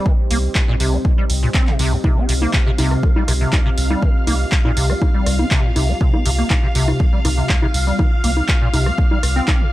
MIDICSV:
0, 0, Header, 1, 6, 480
1, 0, Start_track
1, 0, Key_signature, -3, "minor"
1, 0, Tempo, 495868
1, 56, Time_signature, 4, 2, 24, 8
1, 9416, End_track
2, 0, Start_track
2, 0, Title_t, "String machine"
2, 0, Program_c, 0, 50
2, 1977, Note_on_c, 0, 77, 79
2, 9416, Note_off_c, 0, 77, 0
2, 9416, End_track
3, 0, Start_track
3, 0, Title_t, "Ambient pad"
3, 0, Program_c, 1, 92
3, 0, Note_on_c, 1, 60, 91
3, 0, Note_on_c, 1, 67, 90
3, 0, Note_on_c, 1, 75, 70
3, 0, Note_on_c, 1, 84, 82
3, 5824, Note_on_c, 1, 86, 85
3, 5970, Note_off_c, 1, 84, 0
3, 9416, Note_off_c, 1, 60, 0
3, 9416, Note_off_c, 1, 67, 0
3, 9416, Note_off_c, 1, 75, 0
3, 9416, Note_off_c, 1, 86, 0
3, 9416, End_track
4, 0, Start_track
4, 0, Title_t, "Acid bass"
4, 0, Program_c, 2, 38
4, 56, Note_on_c, 2, 51, 74
4, 125, Note_off_c, 2, 51, 0
4, 297, Note_on_c, 2, 58, 73
4, 365, Note_off_c, 2, 58, 0
4, 661, Note_on_c, 2, 46, 101
4, 725, Note_off_c, 2, 46, 0
4, 776, Note_on_c, 2, 48, 76
4, 901, Note_on_c, 2, 58, 96
4, 915, Note_off_c, 2, 48, 0
4, 939, Note_off_c, 2, 58, 0
4, 1141, Note_on_c, 2, 55, 70
4, 1205, Note_off_c, 2, 55, 0
4, 1382, Note_on_c, 2, 46, 72
4, 1445, Note_off_c, 2, 46, 0
4, 1497, Note_on_c, 2, 60, 79
4, 1621, Note_on_c, 2, 48, 95
4, 1636, Note_off_c, 2, 60, 0
4, 1716, Note_off_c, 2, 48, 0
4, 1737, Note_on_c, 2, 48, 97
4, 1862, Note_on_c, 2, 36, 75
4, 1877, Note_off_c, 2, 48, 0
4, 1900, Note_off_c, 2, 36, 0
4, 1978, Note_on_c, 2, 48, 79
4, 2103, Note_on_c, 2, 60, 75
4, 2117, Note_off_c, 2, 48, 0
4, 2197, Note_off_c, 2, 60, 0
4, 2217, Note_on_c, 2, 48, 77
4, 2258, Note_off_c, 2, 48, 0
4, 2342, Note_on_c, 2, 58, 71
4, 2437, Note_off_c, 2, 58, 0
4, 2456, Note_on_c, 2, 48, 78
4, 2497, Note_off_c, 2, 48, 0
4, 2581, Note_on_c, 2, 48, 101
4, 2619, Note_off_c, 2, 48, 0
4, 2697, Note_on_c, 2, 48, 102
4, 2938, Note_on_c, 2, 51, 82
4, 2952, Note_off_c, 2, 48, 0
4, 3005, Note_off_c, 2, 51, 0
4, 3061, Note_on_c, 2, 55, 73
4, 3125, Note_off_c, 2, 55, 0
4, 3176, Note_on_c, 2, 48, 74
4, 3217, Note_off_c, 2, 48, 0
4, 3301, Note_on_c, 2, 48, 71
4, 3416, Note_on_c, 2, 36, 95
4, 3430, Note_off_c, 2, 48, 0
4, 3484, Note_off_c, 2, 36, 0
4, 3540, Note_on_c, 2, 48, 97
4, 3579, Note_off_c, 2, 48, 0
4, 3779, Note_on_c, 2, 55, 74
4, 3896, Note_on_c, 2, 51, 80
4, 3910, Note_off_c, 2, 55, 0
4, 3964, Note_off_c, 2, 51, 0
4, 4135, Note_on_c, 2, 58, 73
4, 4204, Note_off_c, 2, 58, 0
4, 4499, Note_on_c, 2, 46, 100
4, 4564, Note_off_c, 2, 46, 0
4, 4614, Note_on_c, 2, 48, 74
4, 4739, Note_on_c, 2, 58, 99
4, 4754, Note_off_c, 2, 48, 0
4, 4778, Note_off_c, 2, 58, 0
4, 4979, Note_on_c, 2, 55, 72
4, 5219, Note_on_c, 2, 60, 94
4, 5234, Note_off_c, 2, 55, 0
4, 5284, Note_off_c, 2, 60, 0
4, 5334, Note_on_c, 2, 48, 95
4, 5459, Note_on_c, 2, 46, 98
4, 5473, Note_off_c, 2, 48, 0
4, 5523, Note_off_c, 2, 46, 0
4, 5575, Note_on_c, 2, 48, 77
4, 5698, Note_on_c, 2, 58, 97
4, 5713, Note_off_c, 2, 48, 0
4, 5738, Note_off_c, 2, 58, 0
4, 5814, Note_on_c, 2, 48, 78
4, 5940, Note_on_c, 2, 60, 74
4, 5954, Note_off_c, 2, 48, 0
4, 6036, Note_off_c, 2, 60, 0
4, 6055, Note_on_c, 2, 48, 75
4, 6097, Note_off_c, 2, 48, 0
4, 6180, Note_on_c, 2, 58, 73
4, 6276, Note_off_c, 2, 58, 0
4, 6296, Note_on_c, 2, 48, 83
4, 6337, Note_off_c, 2, 48, 0
4, 6419, Note_on_c, 2, 48, 103
4, 6458, Note_off_c, 2, 48, 0
4, 6536, Note_on_c, 2, 48, 98
4, 6776, Note_on_c, 2, 51, 83
4, 6790, Note_off_c, 2, 48, 0
4, 6844, Note_off_c, 2, 51, 0
4, 6899, Note_on_c, 2, 55, 72
4, 6964, Note_off_c, 2, 55, 0
4, 7016, Note_on_c, 2, 48, 76
4, 7057, Note_off_c, 2, 48, 0
4, 7138, Note_on_c, 2, 48, 73
4, 7255, Note_on_c, 2, 36, 101
4, 7269, Note_off_c, 2, 48, 0
4, 7324, Note_off_c, 2, 36, 0
4, 7379, Note_on_c, 2, 48, 95
4, 7418, Note_off_c, 2, 48, 0
4, 7620, Note_on_c, 2, 55, 75
4, 7734, Note_on_c, 2, 51, 80
4, 7749, Note_off_c, 2, 55, 0
4, 7804, Note_off_c, 2, 51, 0
4, 7975, Note_on_c, 2, 58, 75
4, 8044, Note_off_c, 2, 58, 0
4, 8339, Note_on_c, 2, 46, 102
4, 8404, Note_off_c, 2, 46, 0
4, 8455, Note_on_c, 2, 48, 79
4, 8580, Note_on_c, 2, 58, 101
4, 8595, Note_off_c, 2, 48, 0
4, 8619, Note_off_c, 2, 58, 0
4, 8822, Note_on_c, 2, 55, 72
4, 8885, Note_off_c, 2, 55, 0
4, 9060, Note_on_c, 2, 60, 93
4, 9156, Note_off_c, 2, 60, 0
4, 9176, Note_on_c, 2, 60, 79
4, 9302, Note_on_c, 2, 48, 73
4, 9316, Note_off_c, 2, 60, 0
4, 9365, Note_off_c, 2, 48, 0
4, 9416, End_track
5, 0, Start_track
5, 0, Title_t, "Analog synth bass"
5, 0, Program_c, 3, 38
5, 295, Note_on_c, 3, 36, 93
5, 469, Note_off_c, 3, 36, 0
5, 776, Note_on_c, 3, 36, 86
5, 949, Note_off_c, 3, 36, 0
5, 1255, Note_on_c, 3, 36, 81
5, 1428, Note_off_c, 3, 36, 0
5, 1735, Note_on_c, 3, 36, 82
5, 1908, Note_off_c, 3, 36, 0
5, 2216, Note_on_c, 3, 36, 98
5, 2389, Note_off_c, 3, 36, 0
5, 2696, Note_on_c, 3, 36, 83
5, 2869, Note_off_c, 3, 36, 0
5, 3176, Note_on_c, 3, 36, 97
5, 3349, Note_off_c, 3, 36, 0
5, 3656, Note_on_c, 3, 36, 101
5, 3829, Note_off_c, 3, 36, 0
5, 4134, Note_on_c, 3, 36, 93
5, 4308, Note_off_c, 3, 36, 0
5, 4615, Note_on_c, 3, 36, 83
5, 4788, Note_off_c, 3, 36, 0
5, 5095, Note_on_c, 3, 36, 102
5, 5269, Note_off_c, 3, 36, 0
5, 5575, Note_on_c, 3, 36, 106
5, 5748, Note_off_c, 3, 36, 0
5, 6055, Note_on_c, 3, 36, 94
5, 6228, Note_off_c, 3, 36, 0
5, 6535, Note_on_c, 3, 36, 84
5, 6709, Note_off_c, 3, 36, 0
5, 7015, Note_on_c, 3, 36, 100
5, 7188, Note_off_c, 3, 36, 0
5, 7494, Note_on_c, 3, 36, 101
5, 7668, Note_off_c, 3, 36, 0
5, 7975, Note_on_c, 3, 36, 95
5, 8148, Note_off_c, 3, 36, 0
5, 8456, Note_on_c, 3, 36, 86
5, 8629, Note_off_c, 3, 36, 0
5, 8935, Note_on_c, 3, 36, 100
5, 9108, Note_off_c, 3, 36, 0
5, 9416, End_track
6, 0, Start_track
6, 0, Title_t, "Drums"
6, 56, Note_on_c, 9, 36, 102
6, 153, Note_off_c, 9, 36, 0
6, 296, Note_on_c, 9, 46, 92
6, 393, Note_off_c, 9, 46, 0
6, 533, Note_on_c, 9, 39, 117
6, 536, Note_on_c, 9, 36, 108
6, 630, Note_off_c, 9, 39, 0
6, 632, Note_off_c, 9, 36, 0
6, 775, Note_on_c, 9, 46, 97
6, 872, Note_off_c, 9, 46, 0
6, 1015, Note_on_c, 9, 36, 107
6, 1112, Note_off_c, 9, 36, 0
6, 1255, Note_on_c, 9, 46, 94
6, 1352, Note_off_c, 9, 46, 0
6, 1494, Note_on_c, 9, 39, 112
6, 1495, Note_on_c, 9, 36, 113
6, 1590, Note_off_c, 9, 39, 0
6, 1592, Note_off_c, 9, 36, 0
6, 1618, Note_on_c, 9, 39, 33
6, 1715, Note_off_c, 9, 39, 0
6, 1735, Note_on_c, 9, 46, 90
6, 1832, Note_off_c, 9, 46, 0
6, 1975, Note_on_c, 9, 63, 54
6, 1976, Note_on_c, 9, 36, 107
6, 2072, Note_off_c, 9, 36, 0
6, 2072, Note_off_c, 9, 63, 0
6, 2215, Note_on_c, 9, 46, 95
6, 2312, Note_off_c, 9, 46, 0
6, 2339, Note_on_c, 9, 63, 56
6, 2436, Note_off_c, 9, 63, 0
6, 2453, Note_on_c, 9, 39, 116
6, 2456, Note_on_c, 9, 36, 117
6, 2550, Note_off_c, 9, 39, 0
6, 2553, Note_off_c, 9, 36, 0
6, 2695, Note_on_c, 9, 46, 99
6, 2695, Note_on_c, 9, 63, 58
6, 2792, Note_off_c, 9, 46, 0
6, 2792, Note_off_c, 9, 63, 0
6, 2819, Note_on_c, 9, 37, 55
6, 2916, Note_off_c, 9, 37, 0
6, 2936, Note_on_c, 9, 36, 110
6, 3033, Note_off_c, 9, 36, 0
6, 3060, Note_on_c, 9, 63, 58
6, 3157, Note_off_c, 9, 63, 0
6, 3175, Note_on_c, 9, 37, 60
6, 3175, Note_on_c, 9, 46, 102
6, 3272, Note_off_c, 9, 37, 0
6, 3272, Note_off_c, 9, 46, 0
6, 3414, Note_on_c, 9, 39, 117
6, 3415, Note_on_c, 9, 63, 57
6, 3416, Note_on_c, 9, 36, 115
6, 3510, Note_off_c, 9, 39, 0
6, 3512, Note_off_c, 9, 63, 0
6, 3513, Note_off_c, 9, 36, 0
6, 3655, Note_on_c, 9, 46, 96
6, 3752, Note_off_c, 9, 46, 0
6, 3780, Note_on_c, 9, 63, 58
6, 3877, Note_off_c, 9, 63, 0
6, 3896, Note_on_c, 9, 36, 110
6, 3993, Note_off_c, 9, 36, 0
6, 4135, Note_on_c, 9, 46, 102
6, 4135, Note_on_c, 9, 63, 58
6, 4232, Note_off_c, 9, 46, 0
6, 4232, Note_off_c, 9, 63, 0
6, 4374, Note_on_c, 9, 39, 119
6, 4376, Note_on_c, 9, 36, 120
6, 4471, Note_off_c, 9, 39, 0
6, 4473, Note_off_c, 9, 36, 0
6, 4500, Note_on_c, 9, 63, 57
6, 4597, Note_off_c, 9, 63, 0
6, 4615, Note_on_c, 9, 46, 107
6, 4712, Note_off_c, 9, 46, 0
6, 4740, Note_on_c, 9, 37, 54
6, 4837, Note_off_c, 9, 37, 0
6, 4856, Note_on_c, 9, 36, 114
6, 4856, Note_on_c, 9, 63, 59
6, 4953, Note_off_c, 9, 36, 0
6, 4953, Note_off_c, 9, 63, 0
6, 5096, Note_on_c, 9, 37, 60
6, 5096, Note_on_c, 9, 46, 103
6, 5193, Note_off_c, 9, 37, 0
6, 5193, Note_off_c, 9, 46, 0
6, 5220, Note_on_c, 9, 63, 56
6, 5316, Note_off_c, 9, 63, 0
6, 5333, Note_on_c, 9, 39, 124
6, 5336, Note_on_c, 9, 36, 118
6, 5430, Note_off_c, 9, 39, 0
6, 5433, Note_off_c, 9, 36, 0
6, 5575, Note_on_c, 9, 46, 99
6, 5575, Note_on_c, 9, 63, 56
6, 5672, Note_off_c, 9, 46, 0
6, 5672, Note_off_c, 9, 63, 0
6, 5816, Note_on_c, 9, 36, 116
6, 5912, Note_off_c, 9, 36, 0
6, 5939, Note_on_c, 9, 63, 61
6, 6036, Note_off_c, 9, 63, 0
6, 6055, Note_on_c, 9, 46, 107
6, 6152, Note_off_c, 9, 46, 0
6, 6293, Note_on_c, 9, 39, 123
6, 6295, Note_on_c, 9, 63, 59
6, 6296, Note_on_c, 9, 36, 118
6, 6390, Note_off_c, 9, 39, 0
6, 6392, Note_off_c, 9, 63, 0
6, 6393, Note_off_c, 9, 36, 0
6, 6535, Note_on_c, 9, 46, 104
6, 6632, Note_off_c, 9, 46, 0
6, 6660, Note_on_c, 9, 37, 59
6, 6660, Note_on_c, 9, 63, 60
6, 6757, Note_off_c, 9, 37, 0
6, 6757, Note_off_c, 9, 63, 0
6, 6776, Note_on_c, 9, 36, 121
6, 6873, Note_off_c, 9, 36, 0
6, 7016, Note_on_c, 9, 37, 61
6, 7016, Note_on_c, 9, 46, 107
6, 7016, Note_on_c, 9, 63, 60
6, 7113, Note_off_c, 9, 37, 0
6, 7113, Note_off_c, 9, 46, 0
6, 7113, Note_off_c, 9, 63, 0
6, 7253, Note_on_c, 9, 39, 120
6, 7256, Note_on_c, 9, 36, 118
6, 7350, Note_off_c, 9, 39, 0
6, 7353, Note_off_c, 9, 36, 0
6, 7380, Note_on_c, 9, 63, 60
6, 7477, Note_off_c, 9, 63, 0
6, 7495, Note_on_c, 9, 46, 107
6, 7592, Note_off_c, 9, 46, 0
6, 7735, Note_on_c, 9, 63, 58
6, 7736, Note_on_c, 9, 36, 116
6, 7832, Note_off_c, 9, 36, 0
6, 7832, Note_off_c, 9, 63, 0
6, 7976, Note_on_c, 9, 46, 98
6, 8072, Note_off_c, 9, 46, 0
6, 8100, Note_on_c, 9, 63, 56
6, 8197, Note_off_c, 9, 63, 0
6, 8214, Note_on_c, 9, 39, 118
6, 8216, Note_on_c, 9, 36, 116
6, 8310, Note_off_c, 9, 39, 0
6, 8313, Note_off_c, 9, 36, 0
6, 8456, Note_on_c, 9, 46, 104
6, 8456, Note_on_c, 9, 63, 62
6, 8553, Note_off_c, 9, 46, 0
6, 8553, Note_off_c, 9, 63, 0
6, 8580, Note_on_c, 9, 37, 59
6, 8677, Note_off_c, 9, 37, 0
6, 8695, Note_on_c, 9, 36, 118
6, 8792, Note_off_c, 9, 36, 0
6, 8821, Note_on_c, 9, 63, 57
6, 8917, Note_off_c, 9, 63, 0
6, 8936, Note_on_c, 9, 37, 66
6, 8936, Note_on_c, 9, 46, 104
6, 9033, Note_off_c, 9, 37, 0
6, 9033, Note_off_c, 9, 46, 0
6, 9174, Note_on_c, 9, 39, 115
6, 9176, Note_on_c, 9, 36, 117
6, 9176, Note_on_c, 9, 63, 58
6, 9271, Note_off_c, 9, 39, 0
6, 9272, Note_off_c, 9, 36, 0
6, 9272, Note_off_c, 9, 63, 0
6, 9416, End_track
0, 0, End_of_file